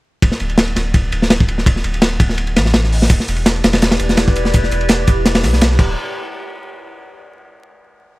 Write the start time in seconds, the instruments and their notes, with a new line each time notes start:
0.22 sub bass D1, kick, ride
0.32 snare
0.40 sub bass D1, ride
0.50 ride
0.58 snare, ride
0.68 ride
0.76 sub bass D1, snare, ride
0.94 kick, ride
1.12 sub bass D1, ride
1.22 snare
1.30 snare, ride
1.40 kick
1.48 ride
1.58 snare
1.66 kick, ride
1.76 snare
1.84 sub bass D1, ride
1.94 ride
2.02 snare, ride
2.20 sub bass D1, kick, ride
2.29 snare
2.38 ride
2.47 ride
2.56 sub bass A1, snare, ride
2.65 snare
2.74 snare, ride
2.84 snare
2.92 open hi-hat
3.02 snare
3.09 sub bass E1, ambient pad E4 G4 B4 D5, kick, closed hi-hat, ride
3.20 snare
3.28 sub bass E1, closed hi-hat, ride
3.36 ride
3.46 snare, closed hi-hat, ride
3.56 ride
3.64 sub bass E1, snare, closed hi-hat, ride
3.73 snare, ride
3.82 snare, closed hi-hat, ride
3.91 snare, ride
3.99 sub bass E1, closed hi-hat, ride
4.09 snare, closed hi-hat
4.17 snare, closed hi-hat, ride
4.27 kick, snare
4.36 closed hi-hat, ride
4.45 snare
4.54 kick, closed hi-hat, ride
4.63 snare
4.71 sub bass E1, closed hi-hat, ride
4.81 ride
4.89 snare, closed hi-hat, ride
5.07 sub bass E1, kick, closed hi-hat, ride
5.25 snare, closed hi-hat, ride
5.35 snare, ride
5.43 sub bass B1, snare, open hi-hat, ride
5.53 snare
5.61 snare, closed hi-hat, ride
5.71 snare
5.79 sub bass D1, kick, crash